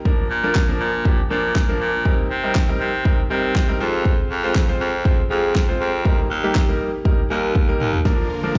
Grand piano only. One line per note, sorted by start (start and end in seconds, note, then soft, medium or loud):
0.05 0.25 F3 medium
0.05 0.26 A#3 medium
0.05 0.26 D4 medium
0.05 0.26 A#4 medium
0.43 0.56 F3 medium
0.43 0.56 A#3 medium
0.43 0.56 D4 medium
0.43 0.56 A#4 medium
0.69 0.88 F3 medium
0.69 0.88 A#3 medium
0.69 0.88 D4 medium
0.69 0.88 A#4 medium
1.05 1.19 F3 medium
1.05 1.19 A#3 medium
1.05 1.19 D4 medium
1.05 1.20 G4 medium
1.30 1.51 F3 medium
1.30 1.51 A#3 medium
1.30 1.51 D4 medium
1.30 1.51 A#4 medium
1.68 1.88 F3 medium
1.68 1.88 A#3 medium
1.68 1.88 D4 medium
1.68 1.88 A#4 medium
2.05 2.26 G3 medium
2.05 2.26 C4 medium
2.05 2.26 D#4 medium
2.05 2.26 A#4 medium
2.43 2.56 G3 medium
2.43 2.56 C4 medium
2.43 2.56 D#4 medium
2.43 2.56 A#4 medium
2.68 2.88 G3 medium
2.68 2.88 C4 medium
2.68 2.88 D#4 medium
2.68 2.88 A#4 medium
3.05 3.19 G3 medium
3.05 3.19 C4 medium
3.05 3.19 D#4 medium
3.05 3.19 A#4 medium
3.30 3.50 G3 medium
3.30 3.51 C4 medium
3.30 3.51 D#4 medium
3.30 3.51 A#4 medium
3.68 3.80 G3 medium
3.68 3.79 C4 medium
3.68 3.80 D#4 medium
3.68 3.80 A#4 medium
3.80 4.30 G#3 medium
3.80 4.30 C4 medium
3.80 4.30 F4 medium
3.80 4.30 C5 loud
4.43 4.56 G#3 medium
4.43 4.56 C4 medium
4.43 4.56 F4 medium
4.43 4.56 C5 medium
4.68 4.88 G#3 medium
4.68 4.88 C4 medium
4.68 4.88 F4 medium
4.68 4.88 C5 loud
5.05 5.19 G#3 medium
5.05 5.19 C4 medium
5.05 5.19 F4 medium
5.05 5.19 C5 medium
5.30 5.50 G#3 medium
5.30 5.51 C4 medium
5.30 5.51 F4 medium
5.30 5.51 G#4 medium
5.68 5.88 G#3 medium
5.68 5.88 C4 medium
5.68 5.88 F4 medium
5.68 5.88 C5 medium
6.05 6.25 G3 medium
6.05 6.26 A#3 medium
6.05 6.26 D#4 medium
6.05 6.26 A#4 medium
6.43 6.56 G3 medium
6.43 6.56 A#3 medium
6.43 6.56 D#4 medium
6.43 6.56 G4 medium
6.68 6.88 G3 medium
6.68 6.88 A#3 medium
6.68 6.88 D#4 medium
6.68 6.88 A#4 medium
7.05 7.19 G3 medium
7.05 7.19 A#3 medium
7.05 7.19 D#4 medium
7.05 7.19 A#4 medium
7.30 7.50 G3 medium
7.30 7.51 A#3 medium
7.30 7.51 D#4 medium
7.30 7.51 A#4 medium
7.68 7.88 G3 medium
7.68 7.88 A#3 medium
7.68 7.88 D#4 medium
7.68 7.88 A#4 medium
8.05 8.25 F3 medium
8.05 8.26 A#3 medium
8.05 8.26 D4 medium
8.05 8.26 A#4 medium
8.43 8.56 F3 medium
8.43 8.56 A#3 medium
8.43 8.56 D4 medium
8.43 8.56 A#4 medium